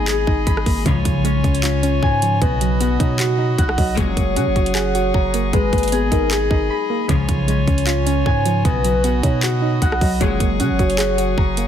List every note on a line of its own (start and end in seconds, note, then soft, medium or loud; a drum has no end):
0.00 0.26 G#1 loud
0.00 0.27 G#3 medium
0.00 0.91 G#3 loud
0.00 0.47 A#3 medium
0.00 0.66 B3 medium
0.00 0.26 D#4 medium
0.00 0.96 F#4 loud
0.00 0.83 G#4 medium
0.00 0.84 D#5 medium
0.00 0.84 G#5 medium
0.00 0.31 A#5 loud
0.00 0.84 B5 medium
0.08 2.35 G#4 loud
0.08 0.86 G#4 loud
0.08 clap loud
0.08 closed hi-hat medium
0.27 0.46 G#1 loud
0.27 0.86 D#4 medium
0.27 kick loud
0.47 0.65 G#1 loud
0.47 1.82 B5 loud
0.47 kick loud
0.47 closed hi-hat medium
0.57 cross-stick loud
0.66 0.85 G#1 loud
0.66 0.86 A#3 medium
0.66 kick loud
0.66 open hi-hat medium
0.85 1.23 C#2 loud
0.85 1.04 C#2 loud
0.85 1.23 G#2 loud
0.85 1.83 C#3 loud
0.85 2.47 C#3 medium
0.85 1.23 F3 loud
0.85 2.40 F4 medium
0.85 2.38 C#5 loud
0.85 2.40 C#5 medium
0.85 2.40 G#5 medium
0.85 2.40 C#6 medium
0.85 kick loud
0.85 closed hi-hat medium
1.05 1.43 B1 loud
1.05 2.03 F3 medium
1.05 kick loud
1.05 closed hi-hat medium
1.24 2.22 G#3 loud
1.24 1.63 C#4 medium
1.24 closed hi-hat medium
1.44 2.00 C#2 loud
1.44 1.82 C#4 medium
1.44 kick medium
1.44 closed hi-hat soft
1.55 closed hi-hat medium
1.63 4.53 C#4 medium
1.63 2.41 F4 loud
1.63 clap loud
1.63 closed hi-hat medium
1.83 2.42 C#4 medium
1.83 closed hi-hat medium
2.03 2.40 G#2 loud
2.03 3.53 G#5 loud
2.03 kick loud
2.22 2.42 F3 medium
2.22 closed hi-hat medium
2.42 2.98 B1 loud
2.42 3.39 B2 loud
2.42 5.20 B3 loud
2.42 3.96 F#4 medium
2.42 2.97 B4 loud
2.42 3.96 D#5 medium
2.42 3.96 B5 medium
2.42 3.96 D#6 medium
2.42 kick loud
2.42 closed hi-hat medium
2.61 3.59 F#3 medium
2.61 closed hi-hat medium
2.80 3.78 B3 medium
2.80 3.19 F#4 medium
2.80 closed hi-hat medium
3.00 3.56 B2 loud
3.00 3.37 D#4 medium
3.00 3.19 C#5 medium
3.00 kick medium
3.00 closed hi-hat medium
3.20 4.36 F#4 loud
3.20 3.98 F#4 loud
3.20 clap loud
3.20 closed hi-hat medium
3.38 3.97 D#4 medium
3.58 3.77 B1 loud
3.58 5.19 F#5 loud
3.58 kick loud
3.58 closed hi-hat medium
3.69 cross-stick loud
3.78 3.97 B1 loud
3.78 3.98 F#3 medium
3.78 3.97 D#5 medium
3.78 kick loud
3.78 open hi-hat medium
3.97 4.16 F#1 loud
3.97 4.34 C#2 medium
3.97 4.34 A#2 loud
3.97 5.58 F#3 loud
3.97 4.95 G#3 loud
3.97 4.34 G#3 loud
3.97 7.06 G#4 medium
3.97 5.49 C#5 loud
3.97 5.52 F#5 medium
3.97 7.06 G#5 medium
3.97 5.52 C#6 medium
3.97 kick loud
3.97 closed hi-hat medium
4.16 4.38 F#1 loud
4.16 5.14 A#3 medium
4.16 kick loud
4.16 closed hi-hat medium
4.36 4.48 C#3 loud
4.36 5.34 C#4 medium
4.36 4.75 F#4 loud
4.36 closed hi-hat medium
4.47 4.55 F#1 loud
4.56 5.12 F#1 loud
4.56 4.94 F#4 medium
4.56 kick medium
4.56 closed hi-hat soft
4.66 closed hi-hat medium
4.74 7.19 F#4 loud
4.74 5.53 G#4 loud
4.74 clap loud
4.74 closed hi-hat medium
4.95 5.53 F#4 medium
4.95 closed hi-hat medium
5.14 5.52 F#1 loud
5.14 6.54 A#5 loud
5.14 kick loud
5.34 5.53 A#3 medium
5.34 closed hi-hat medium
5.53 5.72 G#1 loud
5.53 6.51 G#3 medium
5.53 7.14 G#3 loud
5.53 6.08 B4 loud
5.53 7.08 D#5 medium
5.53 7.08 B5 medium
5.53 kick loud
5.53 closed hi-hat medium
5.73 6.10 G#1 loud
5.73 6.70 A#3 medium
5.73 kick loud
5.73 closed hi-hat soft
5.78 closed hi-hat medium
5.83 closed hi-hat medium
5.88 closed hi-hat medium
5.92 6.90 B3 medium
5.92 6.31 G#4 medium
5.92 closed hi-hat medium
6.12 6.49 G#1 loud
6.12 6.49 D#4 medium
6.12 6.30 A#4 medium
6.12 kick medium
6.12 closed hi-hat medium
6.31 8.59 G#4 loud
6.31 7.09 G#4 loud
6.31 clap loud
6.31 closed hi-hat medium
6.51 6.69 G#1 loud
6.51 7.09 D#4 medium
6.51 kick loud
6.70 8.05 B5 loud
6.90 7.09 A#3 medium
7.09 7.28 C#2 loud
7.09 7.46 C#2 loud
7.09 7.46 G#2 loud
7.09 8.06 C#3 loud
7.09 8.70 C#3 medium
7.09 7.46 F3 loud
7.09 8.63 F4 medium
7.09 8.61 C#5 loud
7.09 8.63 C#5 medium
7.09 8.63 G#5 medium
7.09 8.63 C#6 medium
7.09 kick loud
7.09 closed hi-hat medium
7.29 7.66 B1 loud
7.29 8.26 F3 medium
7.29 kick loud
7.29 closed hi-hat medium
7.48 8.45 G#3 loud
7.48 7.87 C#4 medium
7.48 closed hi-hat medium
7.68 8.24 C#2 loud
7.68 8.05 C#4 medium
7.68 kick medium
7.68 closed hi-hat soft
7.78 closed hi-hat medium
7.86 10.77 C#4 loud
7.86 8.65 F4 loud
7.86 clap loud
7.86 closed hi-hat medium
8.06 8.65 C#4 medium
8.06 closed hi-hat medium
8.26 8.63 G#2 loud
8.26 9.76 G#5 loud
8.26 kick loud
8.46 8.65 F3 medium
8.46 closed hi-hat medium
8.65 9.21 B1 loud
8.65 9.62 B2 loud
8.65 11.44 B3 loud
8.65 10.19 F#4 medium
8.65 9.20 B4 loud
8.65 10.19 D#5 medium
8.65 10.19 B5 medium
8.65 10.19 D#6 medium
8.65 kick loud
8.65 closed hi-hat medium
8.84 9.82 F#3 medium
8.84 closed hi-hat medium
9.04 10.01 B3 medium
9.04 9.42 F#4 medium
9.04 closed hi-hat medium
9.23 9.80 B2 loud
9.23 9.61 D#4 medium
9.23 9.42 C#5 medium
9.23 kick medium
9.23 closed hi-hat medium
9.43 10.59 F#4 loud
9.43 10.21 F#4 loud
9.43 clap loud
9.43 closed hi-hat medium
9.62 10.21 D#4 medium
9.82 10.01 B1 loud
9.82 11.43 F#5 loud
9.82 kick loud
9.82 closed hi-hat medium
9.92 cross-stick loud
10.01 10.20 B1 loud
10.01 10.21 F#3 medium
10.01 10.20 D#5 medium
10.01 kick loud
10.01 open hi-hat medium
10.21 10.40 F#1 loud
10.21 10.58 C#2 medium
10.21 10.58 A#2 loud
10.21 11.68 F#3 loud
10.21 11.18 G#3 medium
10.21 10.58 G#3 loud
10.21 11.68 G#4 medium
10.21 11.68 C#5 loud
10.21 11.68 F#5 medium
10.21 11.68 G#5 medium
10.21 11.68 C#6 medium
10.21 kick loud
10.21 closed hi-hat medium
10.40 10.61 F#1 loud
10.40 11.38 A#3 medium
10.40 kick loud
10.40 closed hi-hat medium
10.60 10.72 C#3 loud
10.60 11.57 C#4 loud
10.60 10.98 F#4 loud
10.60 closed hi-hat medium
10.70 10.79 F#1 loud
10.79 11.35 F#1 loud
10.79 11.17 F#4 medium
10.79 kick medium
10.79 closed hi-hat soft
10.90 closed hi-hat medium
10.98 11.68 F#4 loud
10.98 11.68 G#4 loud
10.98 clap loud
10.98 closed hi-hat medium
11.18 11.68 F#4 medium
11.18 closed hi-hat medium
11.38 11.68 F#1 loud
11.38 11.68 A#5 loud
11.38 kick loud
11.57 11.68 A#3 medium
11.57 closed hi-hat medium